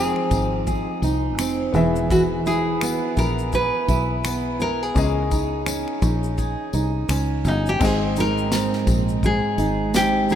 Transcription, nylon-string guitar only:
Already playing: G#4
2.11 F#4
2.47 G#4
3.19 A#4
3.55 B4
4.62 A#4
4.83 G#4
7.48 D#4
7.69 G4
7.85 G#4
8.20 A#4
9.26 G#4
9.96 G4
10.32 G#4

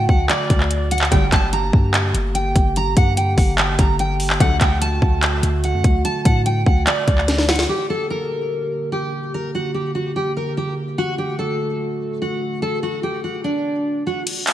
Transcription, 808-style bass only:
0.09 D2
0.50 D2
1.12 G1
1.32 G1
1.73 G2
2.14 G1
2.56 G1
2.97 G2
3.38 G1
3.79 G1
4.40 D2
4.61 D2
5.02 D2
5.43 D2
5.74 F#2
5.84 D2
6.25 A2
6.67 D2
7.08 D2

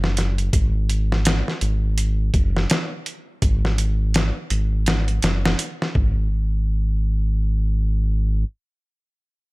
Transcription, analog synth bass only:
Already playing: F#1
0.53 G#1
1.62 G#1
2.34 F#1
3.42 G#1
4.51 G#1
5.23 F#1
5.96 G#1

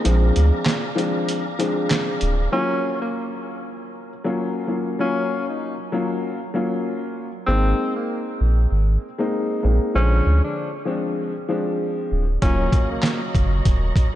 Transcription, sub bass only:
0.06 A#1
0.37 D2
2.22 D1
7.48 G#1
8.41 A#1
8.72 G#1
9.64 A#1
9.95 A#1
10.26 D2
12.12 D1
12.43 D#1
13.35 F#1
13.66 D#1

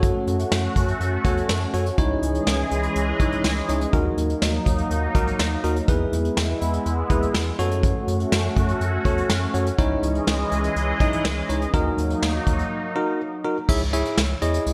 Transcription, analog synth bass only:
Already playing: F#2
0.27 F#2
0.52 F#2
0.76 F#2
1.01 F#2
1.25 E2
1.49 F#2
1.74 F#2
1.98 C#2
2.23 C#2
2.47 C#2
2.71 C#2
2.96 C#2
3.20 B1
3.44 C#2
3.69 C#2
3.93 D#2
4.18 D#2
4.42 D#2
4.66 D#2
4.91 D#2
5.15 C#2
5.40 D#2
5.64 D#2
5.88 E2
6.13 E2
6.37 E2
6.62 E2
6.86 E2
7.10 D#2
7.35 E2
7.59 F#2
8.08 F#2
8.32 F#2
8.56 F#2
8.81 F#2
9.05 E2
9.30 F#2
9.54 F#2
9.79 C#2
10.03 C#2
10.27 C#2
10.52 C#2
10.76 C#2
11.00 B1
11.25 C#2
11.49 C#2
11.74 D#2
11.98 D#2
12.22 D#2
12.47 D#2
13.69 C#2
14.18 C#2
14.42 E2
14.66 C#2

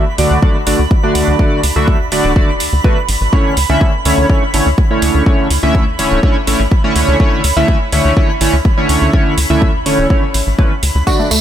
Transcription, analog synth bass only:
0.18 D2
0.31 D2
0.67 A1
0.79 D2
1.15 D2
1.28 D2
1.64 D2
1.76 D2
2.12 D1
2.24 D1
2.60 D2
2.73 D2
3.09 A1
3.21 A1
3.57 D2
3.70 D2
4.05 D2
4.18 D2
4.54 A1
4.66 D2
5.02 D2
5.15 D2
5.51 D2
5.63 D2
5.99 D1
6.12 D1
6.47 A1
6.60 A1
6.96 D2
7.08 D2
7.44 D2
7.57 D2
7.93 D2
8.05 D2
8.41 A1
8.53 D2
8.89 D2
9.02 D2
9.38 D2
9.50 D2
9.86 D1
9.98 D1
10.34 A1
10.47 A1
10.83 D2
10.95 D2
11.31 D2

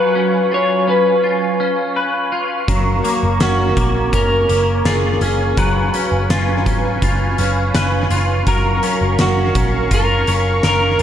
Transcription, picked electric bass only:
2.68 F#1
3.23 F#1
3.41 F#1
3.77 A#1
4.13 F#1
4.49 F#1
4.85 F#1
5.21 F#1
5.58 F#1
6.12 F#1
6.30 F#1
6.66 G#1
7.02 F#1
7.39 F#1
7.75 F#1
8.10 F#1
8.47 F#1
9.01 F#1
9.19 F#1
9.55 A#1
9.91 F#1
10.28 F#1
10.64 F#1

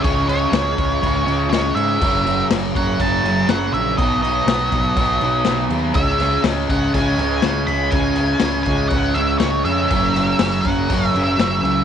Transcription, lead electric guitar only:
0.02 C#5
0.29 C#5
1.50 C#5
1.75 E5
2.77 F#5
3.01 A5
3.49 F#5
3.74 E5
3.98 D#5
4.22 D#5
5.95 E5
6.70 F#5
6.94 G#5
7.67 B5
7.91 G#5
8.63 G#5
8.89 F#5
9.14 E5
9.38 C#5
9.65 E5
10.62 F#5
11.08 E5
11.24 E5
11.48 E5

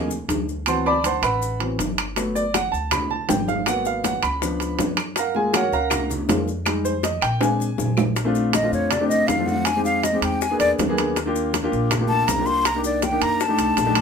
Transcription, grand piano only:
0.67 E3 F#3 B3 C4 C5 F#5 A5 C6
0.86 D5 A5 B5 D6
1.06 C5 F#5 A5 C6
1.23 B4 E5 F#5 B5
1.60 E3 F#3 B3 C4
2.16 F#3 A3 B3
2.35 D5
2.54 F#5
2.72 A5
2.92 B5
3.11 A5
3.29 G5
3.48 F5
3.66 F#3 A#3 B3 F#5
3.86 F5
4.05 F#5
4.23 B5
4.42 F3 B3 D4
5.18 A#4 F5 F#5 A#5
5.35 G#3 A#3 F4 G#4 G#5
5.55 F#4 A#4 C#5 F#5
5.73 A#4 F5 F#5 A#5
6.29 G#3 A#3 F4
6.66 G3 G#3 D#4
6.85 C5
7.04 D#5
7.22 G5
7.41 G#3 C4 D4 G#5
8.25 A3 C4 D4 F4
8.62 A3 C4 D4 F4
9.00 A3 C4 D4 G4
9.39 A3 C4 D4 F4
9.76 G#3 C4 D#4 G4
10.13 G#3 C4 D#4 G4
10.50 A#3 B3 D4 G#4
10.88 A#3 B3 D4 G#4
11.26 A#3 D4 F4 G4
11.63 A#3 D4 F4 G4
12.00 A#3 D4 F4 G4
12.38 A#3 D4 F4 G4
12.75 A#3 D4 D#4 G4
13.12 A#3 D4 D#4 G4
13.48 A3 D4 D#4 G4
13.85 A3 D4 D#4 G4

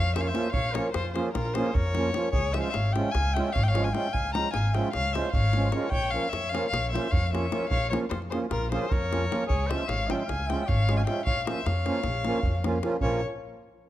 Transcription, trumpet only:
Already playing: C#5
0.15 C5
0.21 C#5
0.28 C5
0.53 C#5
0.73 A#4
0.94 F4
1.15 G#4
1.33 F4
1.55 G#4
1.74 A#4
2.32 G#4
2.53 C5
2.60 C5 C#5
2.71 C#5
2.92 E5
3.12 F5
3.33 E5
3.53 C#5
3.62 E5
3.68 C#5
3.83 F5
3.93 E5
4.11 F5
4.33 G5
4.51 F5
4.73 E5
4.92 C#5
5.14 C5
5.34 C#5
5.72 A#4
5.90 C#5
6.12 C#5
6.30 C#5
6.52 C#5
6.70 C#5
6.92 C5
7.11 C#5
7.28 C#5
7.70 C#5
7.90 A#4
8.09 F4
8.29 G#4
8.48 F4
8.70 G#4
8.89 A#4
9.46 G#4
9.66 C5
9.86 C#5
10.07 E5
10.26 F5
10.46 E5
10.66 C#5
10.97 F5
11.05 E5
11.25 C#5
11.42 C#5
11.46 C5
11.66 C#5
13.02 A#3

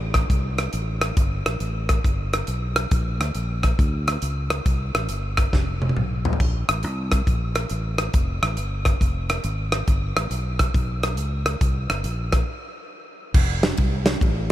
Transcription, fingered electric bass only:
Already playing: A1
0.30 C2
0.74 A1
1.17 G1
1.46 A#1
1.61 A1
2.04 G1
2.48 B1
2.91 A#1
3.21 D2
3.35 A#1
3.79 D2
4.22 C#2
4.66 C2
4.95 A1
5.10 G1
5.53 F1
5.97 B1
6.40 A#1
6.69 A1
6.84 C2
7.27 A#1
7.71 A1
8.14 F1
8.43 A1
8.57 G1
9.01 F1
9.44 G#1
9.88 G1
10.16 A1
10.31 B1
10.75 B1
11.18 C#2
11.61 C2
11.89 G1
12.04 A#1
13.34 F1
13.79 C2
14.21 A1

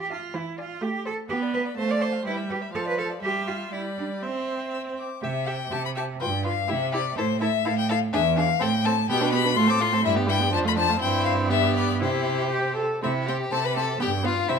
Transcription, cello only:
0.00 G4
0.12 F4
0.36 E4
0.59 F4
0.82 G4
1.06 A4
1.29 G4
1.54 B4
1.78 C5
1.91 D5
2.01 C5
2.26 E4
2.51 G4
2.75 A4
2.88 B4
2.99 A4
3.23 G4
3.48 F4
3.73 E4
3.98 D4
4.23 C4
5.23 C3
5.72 C3
6.22 G2
6.70 C3
7.19 A2
7.66 A2
8.14 E2
8.61 A2
9.10 B2
9.57 A2
10.05 G2
10.53 F2
11.01 G2
12.01 C3
13.03 C3
13.52 C3
14.01 G2
14.49 C3

